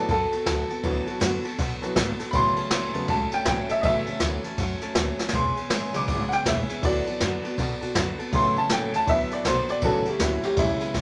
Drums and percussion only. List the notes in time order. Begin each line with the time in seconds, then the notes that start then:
0.09 kick, ride
0.32 snare, ride
0.46 kick, snare, ride
0.70 ride
0.83 kick, ride
1.07 ride
1.21 snare, ride
1.45 ride
1.59 kick, snare, ride
1.83 snare, ride
1.96 kick, snare, ride
2.19 snare, ride
2.33 kick, ride
2.56 ride
2.71 snare, ride
2.94 ride
3.08 kick, ride
3.31 snare, ride
3.45 kick, snare, ride
3.69 snare, ride
3.83 kick, ride
4.06 ride
4.20 snare, ride
4.44 snare, ride
4.58 kick, snare, ride
4.81 snare, ride
4.95 kick, snare, ride
5.19 snare
5.29 snare
5.33 kick, ride
5.57 ride
5.70 snare, ride
5.94 snare, ride
6.08 kick, ride
6.32 snare, ride
6.46 kick, snare, ride
6.69 snare, ride
6.83 kick, ride
7.07 ride
7.20 snare, ride
7.44 ride
7.58 kick, snare, ride
7.82 ride
7.95 kick, snare, ride
8.19 ride
8.33 kick, ride
8.56 ride
8.69 snare, ride
8.93 snare, ride
9.07 kick, ride
9.31 snare, ride
9.45 kick, snare, ride
9.69 snare, ride
9.81 kick, ride
10.05 ride
10.19 snare, ride
10.43 snare, ride
10.57 kick, snare, ride
10.80 snare, ride
10.94 kick, snare